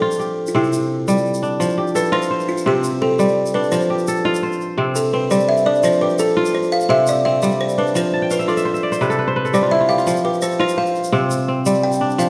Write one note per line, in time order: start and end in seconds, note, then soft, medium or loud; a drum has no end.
0.00 0.60 F3 medium
0.00 0.24 C4 medium
0.00 0.99 D4 medium
0.00 1.53 F4 medium
0.00 0.19 G4 medium
0.00 0.50 A4 medium
0.11 shaker soft
0.19 1.61 G4 medium
0.19 shaker soft
0.47 0.55 F4 medium
0.47 shaker soft
0.55 1.66 C3 medium
0.55 2.35 C4 medium
0.55 1.40 E4 medium
0.64 shaker soft
0.73 shaker medium
1.08 1.66 G3 medium
1.08 shaker medium
1.18 shaker soft
1.26 shaker soft
1.34 shaker soft
1.43 3.11 D4 medium
1.43 shaker soft
1.60 2.71 F3 medium
1.60 shaker medium
1.78 3.19 G4 medium
1.87 shaker soft
1.95 3.27 A4 medium
1.95 2.14 B4 loud
1.95 shaker medium
2.05 shaker soft
2.12 3.64 F4 medium
2.12 2.50 C5 medium
2.22 shaker soft
2.31 3.49 C5 medium
2.40 shaker soft
2.48 2.65 F4 medium
2.48 shaker soft
2.58 shaker soft
2.66 3.77 C3 medium
2.66 3.01 C4 medium
2.66 3.03 G4 medium
2.84 shaker medium
3.02 4.77 C4 medium
3.02 3.56 A4 medium
3.19 3.77 G3 medium
3.19 shaker medium
3.28 shaker soft
3.46 shaker soft
3.54 5.22 D4 medium
3.54 3.73 B4 medium
3.63 shaker soft
3.72 4.83 F3 medium
3.72 4.05 C5 medium
3.72 shaker medium
3.81 shaker soft
3.90 5.31 G4 medium
3.98 shaker soft
4.07 5.40 A4 medium
4.07 shaker medium
4.17 shaker soft
4.25 5.77 F4 medium
4.34 shaker soft
4.43 5.62 C5 medium
4.52 shaker soft
4.61 shaker soft
4.78 5.89 C3 medium
4.78 5.13 C4 medium
4.96 5.14 A4 medium
4.96 shaker medium
5.13 6.89 C4 medium
5.13 5.32 B4 medium
5.31 5.89 G3 medium
5.31 5.49 C5 medium
5.31 shaker medium
5.40 shaker soft
5.49 5.67 E5 medium
5.57 shaker soft
5.66 7.34 D4 medium
5.66 5.82 D5 medium
5.75 shaker soft
5.83 6.94 F3 medium
5.83 6.02 C5 medium
5.83 shaker medium
6.01 7.43 G4 medium
6.01 6.19 B4 medium
6.10 shaker soft
6.19 7.51 A4 medium
6.19 6.56 A4 medium
6.19 shaker medium
6.28 shaker soft
6.37 7.88 F4 medium
6.45 shaker medium
6.55 6.73 C5 medium
6.63 shaker soft
6.72 6.90 F5 loud
6.72 shaker soft
6.81 shaker soft
6.89 8.00 C3 medium
6.89 7.25 C4 medium
6.89 7.08 E5 loud
7.07 7.24 D5 medium
7.07 shaker medium
7.25 9.07 C4 medium
7.25 7.43 E5 medium
7.42 8.00 G3 medium
7.42 7.61 D5 medium
7.42 shaker medium
7.51 shaker soft
7.61 7.78 C5 medium
7.69 shaker soft
7.78 9.46 D4 medium
7.78 7.96 B4 medium
7.87 shaker soft
7.95 9.06 F3 medium
7.95 8.32 C5 medium
7.95 shaker medium
8.13 9.00 A5 medium
8.22 9.15 G5 medium
8.31 8.36 B4 medium
8.31 8.63 F5 medium
8.31 shaker medium
8.39 8.48 B4 medium
8.39 8.57 E5 medium
8.39 shaker soft
8.48 9.62 F4 medium
8.48 8.98 A4 medium
8.48 8.83 D5 medium
8.48 shaker soft
8.57 8.74 E5 medium
8.57 shaker medium
8.65 8.91 C5 medium
8.74 9.69 E5 medium
8.74 shaker soft
8.83 9.94 D5 medium
8.92 9.25 C5 medium
8.92 shaker medium
9.01 10.12 C3 medium
9.01 9.18 B4 medium
9.01 shaker soft
9.10 9.44 A4 medium
9.10 shaker soft
9.19 9.36 B4 medium
9.28 10.46 C5 medium
9.36 10.59 B4 medium
9.45 10.42 A4 medium
9.45 shaker soft
9.54 10.12 G3 medium
9.54 9.89 G4 medium
9.54 9.72 C5 medium
9.54 shaker medium
9.63 9.80 F4 medium
9.71 10.04 E4 medium
9.71 9.88 E5 loud
9.80 9.98 F4 medium
9.89 10.24 G4 medium
9.89 10.25 F5 loud
9.89 shaker soft
9.98 10.59 F4 medium
9.98 shaker soft
10.07 11.18 F3 medium
10.07 shaker medium
10.16 shaker soft
10.24 11.66 G4 medium
10.24 10.43 B4 medium
10.34 shaker soft
10.42 11.74 A4 medium
10.42 10.59 C5 medium
10.42 shaker medium
10.51 shaker soft
10.60 12.11 F4 medium
10.60 10.78 C5 medium
10.68 shaker medium
10.77 11.96 C5 medium
10.77 10.94 F5 medium
10.86 shaker soft
10.95 shaker soft
11.04 shaker medium
11.12 12.24 C3 medium
11.12 11.48 C4 medium
11.31 shaker medium
11.48 12.29 C4 medium
11.66 12.24 G3 medium
11.66 shaker medium
11.74 shaker soft
11.83 12.20 G5 loud
11.92 shaker soft
12.01 12.29 D4 medium
12.10 shaker soft
12.18 12.29 F3 medium
12.18 12.29 F5 medium
12.18 shaker medium